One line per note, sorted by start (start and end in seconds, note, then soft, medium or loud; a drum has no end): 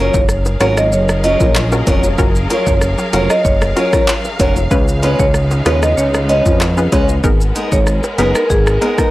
0.00 0.10 F#1 loud
0.00 0.19 F#3 medium
0.00 4.67 F#3 medium
0.00 0.19 C#4 medium
0.00 0.24 C#4 loud
0.00 4.67 C#4 medium
0.00 0.19 F4 medium
0.00 0.24 F4 medium
0.00 0.24 F#4 medium
0.00 4.67 G#4 medium
0.00 0.19 A#4 medium
0.00 0.24 A#4 loud
0.00 4.67 A#4 medium
0.00 7.20 F5 medium
0.14 0.57 F#1 loud
0.14 0.27 C#5 medium
0.14 kick loud
0.14 high bongo medium
0.14 shaker medium
0.29 cross-stick medium
0.29 shaker medium
0.46 high bongo medium
0.46 shaker medium
0.60 0.94 G#1 medium
0.60 0.82 F#3 medium
0.60 0.76 C#4 medium
0.60 0.82 C#4 medium
0.60 0.76 F4 medium
0.60 0.82 F4 loud
0.60 0.76 F#4 medium
0.60 0.76 A#4 medium
0.60 0.82 A#4 medium
0.60 0.75 C#5 medium
0.60 cross-stick medium
0.60 closed hi-hat medium
0.60 low bongo medium
0.60 shaker medium
0.77 0.90 D#5 medium
0.77 cross-stick loud
0.77 shaker medium
0.92 1.37 F#1 loud
0.92 1.06 C#5 medium
0.92 shaker medium
1.09 cross-stick loud
1.09 shaker medium
1.23 1.40 F#3 medium
1.23 1.40 C#4 medium
1.23 1.39 F4 medium
1.23 1.39 A#4 medium
1.23 1.38 D#5 medium
1.23 closed hi-hat medium
1.23 shaker soft
1.40 1.83 A#1 medium
1.40 1.56 F#3 medium
1.40 1.56 C#4 medium
1.40 1.56 F4 medium
1.40 1.56 A#4 medium
1.40 kick loud
1.40 shaker medium
1.55 cross-stick loud
1.55 clap medium
1.55 shaker medium
1.72 1.86 C#4 medium
1.72 1.86 F4 medium
1.72 1.86 F#4 medium
1.72 1.86 A#4 medium
1.72 high bongo medium
1.72 shaker soft
1.87 2.16 F1 loud
1.87 2.08 F#3 medium
1.87 2.03 C#4 medium
1.87 2.03 F4 medium
1.87 2.02 A#4 medium
1.87 kick medium
1.87 closed hi-hat medium
1.87 high bongo medium
1.87 low bongo medium
1.87 shaker medium
2.03 muted steel-string acoustic guitar stroke soft
2.03 shaker medium
2.18 2.47 F#1 loud
2.18 2.77 C#4 loud
2.18 2.77 F4 medium
2.18 2.77 F#4 medium
2.18 2.77 A#4 loud
2.18 kick loud
2.18 shaker medium
2.35 shaker medium
2.50 2.71 F#3 loud
2.50 2.72 C#4 medium
2.50 2.72 F4 loud
2.50 2.72 A#4 loud
2.50 closed hi-hat medium
2.50 shaker medium
2.67 2.96 F#1 medium
2.67 2.79 C#5 medium
2.67 kick medium
2.67 high bongo medium
2.67 shaker medium
2.81 cross-stick medium
2.81 shaker medium
2.98 high bongo medium
2.98 shaker soft
3.13 3.28 F1 medium
3.13 3.35 F#3 medium
3.13 3.29 C#4 medium
3.13 3.35 C#4 medium
3.13 3.29 F4 medium
3.13 3.35 F4 medium
3.13 3.29 F#4 medium
3.13 3.29 A#4 medium
3.13 3.35 A#4 medium
3.13 3.28 C#5 medium
3.13 closed hi-hat medium
3.13 low bongo medium
3.13 shaker medium
3.30 3.43 D#5 medium
3.30 cross-stick loud
3.30 shaker medium
3.45 3.74 F#1 loud
3.45 3.90 C#5 medium
3.45 kick medium
3.45 shaker medium
3.62 cross-stick loud
3.62 shaker medium
3.76 3.93 F#3 medium
3.76 3.92 C#4 medium
3.76 3.92 F4 medium
3.76 3.92 F4 loud
3.76 3.92 F#4 medium
3.76 3.92 A#4 medium
3.76 closed hi-hat medium
3.76 shaker soft
3.93 4.09 F#3 medium
3.93 4.09 C#4 medium
3.93 4.09 F4 medium
3.93 4.08 A#4 medium
3.93 kick loud
3.93 cross-stick medium
3.93 shaker medium
4.08 clap medium
4.08 shaker medium
4.25 high bongo medium
4.25 shaker medium
4.39 4.68 F1 medium
4.39 4.61 F#3 loud
4.39 4.56 C#4 loud
4.39 4.55 F4 loud
4.39 4.55 A#4 medium
4.39 4.54 C#5 medium
4.39 kick loud
4.39 closed hi-hat medium
4.39 high bongo medium
4.39 low bongo medium
4.39 shaker medium
4.56 muted steel-string acoustic guitar stroke medium
4.56 shaker medium
4.71 5.15 C#2 loud
4.71 7.21 C#3 medium
4.71 7.21 G#3 medium
4.71 9.11 B3 medium
4.71 5.29 C#4 loud
4.71 7.21 D#4 medium
4.71 5.30 F4 medium
4.71 5.30 G#4 medium
4.71 5.30 B4 loud
4.71 kick loud
4.71 shaker medium
4.88 shaker medium
5.02 5.24 G#3 loud
5.02 5.24 C#4 medium
5.02 5.24 F4 medium
5.02 5.25 B4 loud
5.02 closed hi-hat medium
5.02 shaker medium
5.20 5.62 C#2 loud
5.20 5.32 C#5 medium
5.20 kick loud
5.20 high bongo medium
5.20 shaker medium
5.34 cross-stick medium
5.34 shaker medium
5.51 high bongo medium
5.51 shaker medium
5.66 5.95 D#2 loud
5.66 5.87 G#3 medium
5.66 5.81 C#4 medium
5.66 5.87 C#4 medium
5.66 5.81 F4 medium
5.66 5.88 F4 medium
5.66 5.81 G#4 medium
5.66 5.81 B4 medium
5.66 5.88 B4 loud
5.66 5.80 C#5 medium
5.66 cross-stick loud
5.66 closed hi-hat medium
5.66 low bongo medium
5.66 shaker medium
5.83 5.95 D#5 medium
5.83 cross-stick loud
5.83 shaker medium
5.97 6.42 C#2 loud
5.97 6.12 C#5 medium
5.97 shaker medium
6.14 cross-stick loud
6.14 shaker medium
6.29 6.45 G#3 medium
6.29 6.45 C#4 medium
6.29 6.45 F4 medium
6.29 6.44 B4 medium
6.29 6.43 D#5 medium
6.29 closed hi-hat medium
6.29 shaker soft
6.45 6.88 F2 medium
6.45 6.62 G#3 medium
6.45 6.61 C#4 medium
6.45 6.61 F4 medium
6.45 6.61 B4 medium
6.45 kick loud
6.45 shaker medium
6.61 cross-stick medium
6.61 clap medium
6.61 shaker medium
6.77 6.91 C#4 medium
6.77 6.91 F4 medium
6.77 6.91 G#4 medium
6.77 6.91 B4 medium
6.77 high bongo medium
6.77 shaker medium
6.92 7.21 C#2 medium
6.92 7.13 G#3 medium
6.92 7.08 C#4 medium
6.92 7.08 F4 medium
6.92 7.08 B4 loud
6.92 kick loud
6.92 closed hi-hat medium
6.92 high bongo medium
6.92 low bongo medium
6.92 shaker medium
7.09 muted steel-string acoustic guitar stroke soft
7.09 shaker medium
7.24 7.53 G#1 loud
7.24 9.11 G#3 medium
7.24 7.82 B3 loud
7.24 7.82 D#4 medium
7.24 7.82 G#4 medium
7.24 9.11 A#4 medium
7.24 7.82 A#4 loud
7.24 kick loud
7.24 shaker medium
7.41 shaker medium
7.55 7.77 G#3 medium
7.55 7.77 B3 medium
7.55 7.77 D#4 medium
7.55 7.77 A#4 medium
7.55 closed hi-hat medium
7.55 shaker medium
7.72 8.01 G#1 medium
7.72 7.85 C#5 medium
7.72 kick medium
7.72 shaker medium
7.87 cross-stick medium
7.87 shaker medium
8.04 high bongo medium
8.04 shaker soft
8.18 8.34 F#1 loud
8.18 8.40 G#3 medium
8.18 8.34 B3 medium
8.18 8.40 B3 medium
8.18 8.34 D#4 medium
8.18 8.40 D#4 medium
8.18 8.34 G#4 medium
8.18 8.34 A#4 medium
8.18 8.40 A#4 loud
8.18 8.33 B4 medium
8.18 closed hi-hat medium
8.18 low bongo medium
8.18 shaker medium
8.35 8.48 A#4 medium
8.35 cross-stick loud
8.35 shaker medium
8.50 8.79 G#1 loud
8.50 8.96 G#4 medium
8.50 kick medium
8.50 shaker medium
8.67 cross-stick loud
8.67 shaker medium
8.81 8.98 G#3 medium
8.81 8.97 B3 medium
8.81 8.98 B3 medium
8.81 8.97 D#4 medium
8.81 8.97 G#4 medium
8.81 8.97 A#4 medium
8.81 closed hi-hat medium
8.81 shaker soft
8.98 9.11 G#3 medium
8.98 9.11 B3 medium
8.98 9.11 D#4 medium
8.98 9.11 A#4 medium
8.98 kick loud
8.98 cross-stick medium
8.98 high bongo medium
8.98 shaker medium